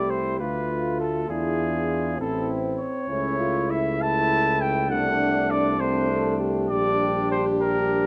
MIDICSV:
0, 0, Header, 1, 6, 480
1, 0, Start_track
1, 0, Tempo, 596421
1, 1039, Time_signature, 6, 3, 24, 8
1, 2481, Tempo, 606673
1, 6424, End_track
2, 0, Start_track
2, 0, Title_t, "Trumpet"
2, 0, Program_c, 0, 56
2, 0, Note_on_c, 0, 74, 75
2, 80, Note_on_c, 0, 72, 66
2, 92, Note_off_c, 0, 74, 0
2, 313, Note_off_c, 0, 72, 0
2, 318, Note_on_c, 0, 71, 67
2, 789, Note_off_c, 0, 71, 0
2, 806, Note_on_c, 0, 69, 67
2, 1037, Note_off_c, 0, 69, 0
2, 1049, Note_on_c, 0, 68, 73
2, 1751, Note_off_c, 0, 68, 0
2, 1776, Note_on_c, 0, 69, 74
2, 2004, Note_off_c, 0, 69, 0
2, 2251, Note_on_c, 0, 73, 81
2, 2973, Note_on_c, 0, 76, 84
2, 2985, Note_off_c, 0, 73, 0
2, 3221, Note_on_c, 0, 81, 101
2, 3233, Note_off_c, 0, 76, 0
2, 3688, Note_on_c, 0, 79, 91
2, 3700, Note_off_c, 0, 81, 0
2, 3916, Note_off_c, 0, 79, 0
2, 3920, Note_on_c, 0, 78, 94
2, 4395, Note_on_c, 0, 74, 83
2, 4407, Note_off_c, 0, 78, 0
2, 4629, Note_on_c, 0, 72, 84
2, 4641, Note_off_c, 0, 74, 0
2, 5108, Note_off_c, 0, 72, 0
2, 5333, Note_on_c, 0, 74, 96
2, 5792, Note_off_c, 0, 74, 0
2, 5828, Note_on_c, 0, 72, 79
2, 5938, Note_off_c, 0, 72, 0
2, 6065, Note_on_c, 0, 70, 84
2, 6424, Note_off_c, 0, 70, 0
2, 6424, End_track
3, 0, Start_track
3, 0, Title_t, "Flugelhorn"
3, 0, Program_c, 1, 56
3, 0, Note_on_c, 1, 64, 52
3, 320, Note_on_c, 1, 65, 54
3, 333, Note_off_c, 1, 64, 0
3, 1028, Note_off_c, 1, 65, 0
3, 1033, Note_on_c, 1, 65, 58
3, 1744, Note_off_c, 1, 65, 0
3, 1769, Note_on_c, 1, 64, 58
3, 2253, Note_off_c, 1, 64, 0
3, 2493, Note_on_c, 1, 64, 64
3, 3181, Note_off_c, 1, 64, 0
3, 3220, Note_on_c, 1, 64, 73
3, 3910, Note_off_c, 1, 64, 0
3, 3925, Note_on_c, 1, 62, 71
3, 4613, Note_off_c, 1, 62, 0
3, 4618, Note_on_c, 1, 62, 78
3, 5328, Note_off_c, 1, 62, 0
3, 5347, Note_on_c, 1, 62, 65
3, 6058, Note_off_c, 1, 62, 0
3, 6079, Note_on_c, 1, 62, 65
3, 6424, Note_off_c, 1, 62, 0
3, 6424, End_track
4, 0, Start_track
4, 0, Title_t, "French horn"
4, 0, Program_c, 2, 60
4, 0, Note_on_c, 2, 67, 64
4, 329, Note_on_c, 2, 65, 51
4, 341, Note_off_c, 2, 67, 0
4, 1041, Note_off_c, 2, 65, 0
4, 1046, Note_on_c, 2, 64, 63
4, 1750, Note_off_c, 2, 64, 0
4, 1765, Note_on_c, 2, 60, 61
4, 2489, Note_on_c, 2, 61, 66
4, 2501, Note_off_c, 2, 60, 0
4, 2721, Note_off_c, 2, 61, 0
4, 2726, Note_on_c, 2, 65, 72
4, 2973, Note_on_c, 2, 64, 64
4, 2984, Note_off_c, 2, 65, 0
4, 3703, Note_off_c, 2, 64, 0
4, 3920, Note_on_c, 2, 62, 77
4, 4636, Note_on_c, 2, 60, 68
4, 4647, Note_off_c, 2, 62, 0
4, 4867, Note_off_c, 2, 60, 0
4, 4872, Note_on_c, 2, 69, 71
4, 5101, Note_off_c, 2, 69, 0
4, 5106, Note_on_c, 2, 67, 87
4, 6424, Note_off_c, 2, 67, 0
4, 6424, End_track
5, 0, Start_track
5, 0, Title_t, "Trombone"
5, 0, Program_c, 3, 57
5, 0, Note_on_c, 3, 57, 49
5, 305, Note_off_c, 3, 57, 0
5, 312, Note_on_c, 3, 57, 54
5, 1043, Note_on_c, 3, 62, 56
5, 1055, Note_off_c, 3, 57, 0
5, 1761, Note_on_c, 3, 60, 61
5, 1773, Note_off_c, 3, 62, 0
5, 2259, Note_off_c, 3, 60, 0
5, 2486, Note_on_c, 3, 57, 63
5, 3177, Note_off_c, 3, 57, 0
5, 3209, Note_on_c, 3, 57, 70
5, 3905, Note_off_c, 3, 57, 0
5, 3915, Note_on_c, 3, 57, 65
5, 4614, Note_off_c, 3, 57, 0
5, 4626, Note_on_c, 3, 57, 70
5, 5332, Note_off_c, 3, 57, 0
5, 5352, Note_on_c, 3, 55, 67
5, 6061, Note_off_c, 3, 55, 0
5, 6070, Note_on_c, 3, 55, 62
5, 6424, Note_off_c, 3, 55, 0
5, 6424, End_track
6, 0, Start_track
6, 0, Title_t, "Tuba"
6, 0, Program_c, 4, 58
6, 0, Note_on_c, 4, 36, 55
6, 321, Note_on_c, 4, 38, 51
6, 333, Note_off_c, 4, 36, 0
6, 1037, Note_off_c, 4, 38, 0
6, 1042, Note_on_c, 4, 40, 59
6, 1758, Note_on_c, 4, 33, 63
6, 1770, Note_off_c, 4, 40, 0
6, 2257, Note_off_c, 4, 33, 0
6, 2483, Note_on_c, 4, 37, 68
6, 3917, Note_on_c, 4, 36, 72
6, 3929, Note_off_c, 4, 37, 0
6, 5347, Note_on_c, 4, 34, 74
6, 5359, Note_off_c, 4, 36, 0
6, 6424, Note_off_c, 4, 34, 0
6, 6424, End_track
0, 0, End_of_file